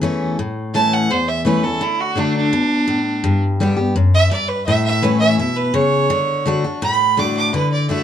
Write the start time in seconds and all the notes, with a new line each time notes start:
Already playing: E2
0.01 E3 A3 C#4 E4
0.39 A2
0.74 E3 A3 C#4 E4 A5
0.93 F#5
1.10 E2 C5
1.28 E5
1.45 E3 A3 C#4 E4 B4
1.64 C#4 E4 A4
1.81 D3 E4
2.00 F#4
2.15 D3 A3 D4 F#4
2.36 D4
2.53 B2
2.88 A2
3.24 G2
3.60 D3 G3 B3 G4
3.77 B3 G4
3.96 F#2
4.14 E5
4.31 G2 D5
4.48 B4
4.66 A2 E5
4.85 E5
5.02 E3 A3 C#4 E4 B4
5.20 E5
5.39 B2 E5
5.56 B4
5.74 C#3 C#5
6.10 D3
6.46 D3 A3 D4 F#4
6.64 D4 F#4
6.82 A2 B5
7.17 D3 A3 D4 F#4 D6
7.37 D6
7.54 D3 B4
7.72 D5
7.89 D3 A3 D4 F#4 E5